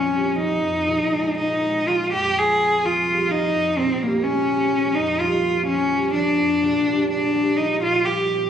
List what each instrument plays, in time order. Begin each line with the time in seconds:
Already playing: harp A#1 F2 F3 A#3 C4, cello C#4
0.11 harp G3
0.35 harp F3, cello D#4
0.61 harp F2
0.88 harp A#1
1.12 harp G#3
1.37 harp A#3, cello D#4
1.64 harp G#3
1.88 harp F3, cello F4
2.12 harp F2, cello G4
2.37 harp G#3, cello G#4
2.61 harp C4
2.85 harp F3, cello F4
3.07 harp G3
3.30 harp F3, cello D#4
3.53 harp F2
3.77 harp A#1, cello C4
4.01 harp G3, cello A#3
4.23 harp G#3, cello C#4
4.49 harp G3
4.72 harp F3
4.95 harp F2, cello D#4
5.20 harp G3, cello F4
5.43 harp A#3
5.66 harp F3, cello C#4
5.91 harp G3
6.14 harp F3, cello D4
6.38 harp F2
6.62 harp A#1
6.87 harp G3
7.10 harp G#3, cello D4
7.35 harp G3
7.57 harp F3, cello D#4
7.83 harp A#2, cello F4
8.05 harp G3, cello G4
8.31 harp C4